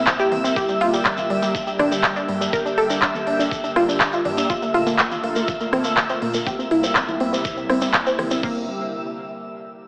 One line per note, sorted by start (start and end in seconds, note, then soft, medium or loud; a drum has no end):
0.00 0.54 C3 medium
0.00 0.54 G3 medium
0.00 4.46 A#3 medium
0.00 0.54 E4 medium
0.00 8.44 E5 medium
0.00 8.44 E6 medium
0.07 0.25 C2 medium
0.07 0.16 C4 medium
0.07 kick loud
0.07 clap loud
0.07 shekere medium
0.19 0.28 G4 loud
0.19 shekere soft
0.32 0.50 G1 medium
0.32 0.40 C4 medium
0.32 open hi-hat loud
0.32 low conga medium
0.44 0.53 C4 medium
0.44 shekere medium
0.56 0.66 G1 medium
0.56 6.43 D3 medium
0.56 4.46 G3 medium
0.56 4.46 G4 medium
0.56 0.65 G4 loud
0.56 kick loud
0.56 high conga medium
0.56 shekere medium
0.69 0.77 G3 medium
0.69 shekere soft
0.81 0.99 G1 medium
0.81 0.90 F4 medium
0.81 open hi-hat loud
0.93 1.02 G3 medium
0.93 shekere medium
1.05 1.24 G1 medium
1.05 1.14 G3 medium
1.05 kick loud
1.05 clap loud
1.05 shekere medium
1.17 high conga medium
1.17 low conga medium
1.17 shekere soft
1.30 1.39 G1 medium
1.30 1.39 G3 medium
1.30 open hi-hat loud
1.42 1.51 G3 medium
1.42 shekere medium
1.55 1.73 G1 loud
1.55 kick loud
1.55 shekere medium
1.67 1.76 G3 medium
1.67 shekere soft
1.79 1.89 G1 medium
1.79 1.88 D4 loud
1.79 cross-stick medium
1.79 open hi-hat loud
1.79 high conga medium
1.79 low conga medium
1.92 2.00 G3 medium
1.92 shekere medium
2.04 2.22 G1 medium
2.04 2.13 G3 medium
2.04 kick loud
2.04 clap loud
2.04 shekere medium
2.16 2.25 D4 medium
2.16 shekere soft
2.29 2.47 G2 medium
2.29 2.37 G3 medium
2.29 open hi-hat loud
2.41 2.49 G3 medium
2.41 shekere medium
2.53 2.62 G1 loud
2.53 2.62 A#4 loud
2.53 kick loud
2.53 high conga medium
2.53 shekere medium
2.65 2.74 D4 medium
2.65 shekere soft
2.78 2.96 G1 medium
2.78 2.86 A4 loud
2.78 open hi-hat loud
2.90 2.99 D4 medium
2.90 shekere medium
3.02 3.21 G1 loud
3.02 3.11 D4 medium
3.02 kick loud
3.02 clap loud
3.02 shekere medium
3.15 high conga medium
3.15 low conga medium
3.15 shekere soft
3.27 3.36 G1 medium
3.27 3.36 D4 medium
3.27 open hi-hat medium
3.39 3.48 D4 medium
3.39 shekere medium
3.51 3.70 G1 loud
3.51 kick loud
3.51 shekere medium
3.64 3.72 D4 medium
3.64 shekere soft
3.76 3.85 G1 medium
3.76 3.85 F4 medium
3.76 cross-stick medium
3.76 open hi-hat loud
3.76 high conga medium
3.88 3.97 D4 medium
3.88 shekere medium
4.00 4.19 G1 medium
4.00 4.09 D4 medium
4.00 kick loud
4.00 clap loud
4.00 shekere medium
4.13 4.22 F4 medium
4.13 shekere soft
4.25 4.43 G2 medium
4.25 4.34 D4 medium
4.25 open hi-hat medium
4.25 low conga medium
4.38 4.46 D4 medium
4.38 shekere medium
4.50 4.59 A#1 loud
4.50 6.45 A3 medium
4.50 8.39 A#3 medium
4.50 4.59 F4 loud
4.50 6.45 F4 medium
4.50 kick loud
4.50 high conga loud
4.50 shekere medium
4.62 4.71 A#3 medium
4.62 shekere soft
4.74 4.93 A#1 medium
4.74 4.83 F4 medium
4.74 open hi-hat loud
4.87 4.95 A#3 medium
4.87 shekere medium
4.99 5.17 A#1 loud
4.99 5.08 A#3 medium
4.99 kick loud
4.99 clap loud
4.99 shekere medium
5.11 high conga medium
5.11 low conga medium
5.11 shekere soft
5.24 5.33 A#1 medium
5.24 5.32 A#3 medium
5.24 open hi-hat medium
5.36 5.45 A#3 medium
5.36 shekere medium
5.48 5.66 A#1 loud
5.48 kick loud
5.48 shekere medium
5.60 5.69 A#3 medium
5.60 shekere soft
5.73 5.82 A#1 medium
5.73 5.82 C4 loud
5.73 cross-stick medium
5.73 open hi-hat loud
5.73 high conga loud
5.73 low conga medium
5.84 5.94 A#3 medium
5.84 shekere medium
5.97 6.16 A#1 medium
5.97 6.06 A#3 medium
5.97 kick loud
5.97 clap loud
5.97 shekere medium
6.09 6.18 C4 medium
6.09 shekere soft
6.22 6.40 A#2 medium
6.22 6.31 A#3 medium
6.22 open hi-hat medium
6.34 6.43 A#3 medium
6.34 shekere medium
6.47 6.56 C2 loud
6.47 8.41 C3 medium
6.47 8.41 G3 medium
6.47 8.41 E4 medium
6.47 6.55 G4 loud
6.47 kick loud
6.47 high conga medium
6.47 shekere medium
6.59 6.68 C4 medium
6.59 shekere soft
6.71 6.89 C2 medium
6.71 6.80 E4 loud
6.71 open hi-hat loud
6.83 6.92 C4 medium
6.83 shekere medium
6.95 7.14 C2 loud
6.95 7.04 C4 medium
6.95 kick loud
6.95 clap loud
6.95 shekere medium
7.08 high conga medium
7.08 low conga medium
7.08 shekere soft
7.20 7.29 C2 medium
7.20 7.29 C4 medium
7.20 open hi-hat medium
7.33 7.41 C4 medium
7.33 shekere medium
7.45 7.63 C2 medium
7.45 kick loud
7.45 shekere medium
7.57 7.66 C4 medium
7.57 shekere soft
7.70 7.88 G1 medium
7.70 7.78 C4 loud
7.70 cross-stick medium
7.70 open hi-hat loud
7.70 high conga loud
7.81 7.90 C4 medium
7.81 shekere medium
7.94 8.03 G1 loud
7.94 8.03 C4 medium
7.94 kick loud
7.94 clap loud
7.94 shekere medium
8.06 8.15 C4 loud
8.06 shekere soft
8.19 8.37 G1 loud
8.19 8.27 C4 medium
8.19 cross-stick medium
8.19 open hi-hat medium
8.19 low conga medium
8.31 8.40 C4 medium
8.31 shekere medium
8.43 8.66 G1 medium
8.43 8.66 D3 medium
8.43 8.66 G3 medium
8.43 8.66 A#3 medium
8.43 8.62 A#3 loud
8.43 8.66 G4 medium
8.43 kick loud
8.43 crash medium